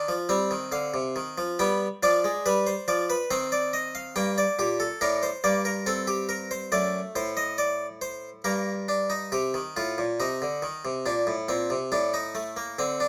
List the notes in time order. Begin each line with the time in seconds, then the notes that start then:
Already playing: D4 D#5
0.08 F3
0.29 G3 C4
0.51 D#3
0.72 D3 F5
0.94 C3
1.16 D#3
1.38 F3
1.59 G3 B3 G5
2.03 F3 D4 D5
2.24 G#3
2.46 G3 B4
2.67 C5
2.88 F3 D5
3.10 B4
3.31 D#3 C4 C5
3.52 D5
3.73 D#5
3.95 F5
4.16 G2 A#3 G5
4.38 D5
4.59 A#2 G4
4.80 A4
5.01 A2 D4 A#4
5.23 C5
5.44 G2 A#3 D5
5.65 A#4
5.86 C4 A4
6.07 G4
6.29 A#4
6.51 C5
6.72 F#2 A3 D5
7.16 A2 C5
7.37 D#5
7.58 D5
8.02 C5
8.44 G2 A#3 A#4
8.89 D4
9.10 D#4
9.32 C3 G4
9.54 D#3
9.77 A2 F4
9.98 A#2
10.20 C3 D#4
10.42 D3
10.62 D#3
10.85 C3
11.06 A#2 D4
11.27 A2
11.49 A#2 C4
11.70 C3
11.92 A2 D4
12.14 D#4
12.35 A3
12.57 A#3
12.79 D3 C4
13.00 D4